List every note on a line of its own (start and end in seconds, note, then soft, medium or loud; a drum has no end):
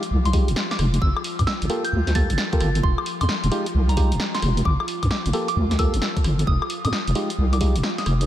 0.00 8.26 F3 medium
0.00 8.26 F4 medium
0.00 closed hi-hat medium
0.11 0.50 C2 loud
0.25 0.50 C6 medium
0.25 closed hi-hat medium
0.33 0.48 G#3 loud
0.33 0.48 D#4 loud
0.33 0.48 F4 loud
0.33 0.48 G4 loud
0.33 kick loud
0.33 open hi-hat loud
0.48 0.55 F1 medium
0.48 closed hi-hat medium
0.56 snare loud
0.71 0.88 D6 medium
0.71 snare medium
0.71 closed hi-hat soft
0.79 0.99 F1 medium
0.79 cross-stick medium
0.79 open hi-hat medium
0.94 closed hi-hat medium
1.02 1.14 G1 loud
1.02 1.27 E6 medium
1.02 kick loud
1.17 cross-stick medium
1.17 high woodblock medium
1.24 open hi-hat loud
1.39 1.46 G2 medium
1.39 kick medium
1.39 closed hi-hat medium
1.39 high woodblock medium
1.47 1.67 E6 loud
1.47 snare loud
1.62 1.68 G1 medium
1.62 closed hi-hat medium
1.70 1.84 A#3 loud
1.70 1.84 F4 medium
1.70 1.84 G4 medium
1.70 1.84 A4 loud
1.70 open hi-hat medium
1.85 2.02 G6 loud
1.85 closed hi-hat medium
1.93 2.32 D2 loud
2.07 snare medium
2.07 closed hi-hat medium
2.15 2.30 A#3 medium
2.15 2.30 F4 medium
2.15 2.30 G4 medium
2.15 2.30 A4 medium
2.15 2.77 A6 loud
2.15 kick loud
2.15 open hi-hat loud
2.30 2.37 G1 medium
2.30 closed hi-hat medium
2.38 snare loud
2.53 2.69 A#3 medium
2.53 2.69 F4 medium
2.53 2.69 G4 medium
2.53 2.69 A4 loud
2.53 kick loud
2.53 closed hi-hat soft
2.60 2.81 G1 medium
2.60 cross-stick medium
2.60 open hi-hat medium
2.75 closed hi-hat medium
2.83 2.96 F1 loud
2.83 3.03 C6 loud
2.83 kick loud
2.98 cross-stick medium
2.98 high woodblock medium
3.06 open hi-hat loud
3.21 3.27 F2 medium
3.21 3.38 C6 loud
3.21 closed hi-hat medium
3.21 high woodblock medium
3.29 snare loud
3.44 3.50 F1 medium
3.44 closed hi-hat medium
3.52 3.66 G#3 medium
3.52 3.66 D#4 medium
3.52 3.66 F4 medium
3.52 3.66 G4 loud
3.52 open hi-hat medium
3.66 closed hi-hat medium
3.74 4.13 C2 loud
3.89 4.13 A#5 loud
3.89 closed hi-hat medium
3.97 4.12 G#3 loud
3.97 4.12 D#4 medium
3.97 4.12 F4 medium
3.97 4.12 G4 loud
3.97 kick loud
3.97 open hi-hat loud
4.12 4.18 F1 medium
4.12 closed hi-hat medium
4.20 snare loud
4.35 4.52 C6 loud
4.35 snare medium
4.35 closed hi-hat soft
4.42 4.62 F1 medium
4.42 cross-stick medium
4.42 open hi-hat medium
4.57 closed hi-hat medium
4.65 4.77 G1 loud
4.65 4.91 D6 medium
4.65 kick loud
4.80 cross-stick medium
4.80 high woodblock medium
4.88 open hi-hat loud
5.03 5.09 G2 medium
5.03 kick medium
5.03 closed hi-hat medium
5.03 high woodblock medium
5.11 5.31 D6 loud
5.11 snare loud
5.26 5.32 G1 medium
5.26 closed hi-hat medium
5.33 5.48 A#3 medium
5.33 5.48 F4 medium
5.33 5.48 G4 medium
5.33 5.48 A4 loud
5.33 open hi-hat medium
5.48 5.66 D6 medium
5.48 closed hi-hat medium
5.56 5.95 D2 loud
5.71 snare medium
5.71 closed hi-hat medium
5.79 5.94 A#3 loud
5.79 5.94 F4 loud
5.79 5.94 G4 medium
5.79 5.94 A4 loud
5.79 6.41 E6 loud
5.79 kick loud
5.79 open hi-hat loud
5.94 6.00 G1 medium
5.94 closed hi-hat medium
6.02 snare loud
6.17 kick loud
6.17 closed hi-hat soft
6.24 6.44 G1 medium
6.24 cross-stick medium
6.24 open hi-hat loud
6.39 closed hi-hat medium
6.47 6.59 F1 loud
6.47 6.67 D#6 loud
6.47 kick loud
6.62 cross-stick medium
6.62 high woodblock medium
6.70 open hi-hat loud
6.85 6.91 F2 medium
6.85 7.02 D#6 loud
6.85 closed hi-hat medium
6.85 high woodblock medium
6.93 snare loud
7.07 7.14 F1 medium
7.07 closed hi-hat medium
7.15 7.30 G#3 loud
7.15 7.30 D#4 medium
7.15 7.30 F4 medium
7.15 7.30 G4 loud
7.15 open hi-hat medium
7.30 closed hi-hat medium
7.38 7.77 C2 loud
7.53 7.77 D6 medium
7.53 closed hi-hat medium
7.61 7.75 G#3 loud
7.61 7.75 D#4 loud
7.61 7.75 F4 medium
7.61 7.75 G4 loud
7.61 kick loud
7.61 open hi-hat loud
7.75 7.82 F1 medium
7.75 closed hi-hat medium
7.83 snare loud
7.98 8.16 D#6 medium
7.98 snare medium
7.98 closed hi-hat soft
8.06 8.26 F1 medium
8.06 cross-stick medium
8.06 open hi-hat medium
8.21 closed hi-hat medium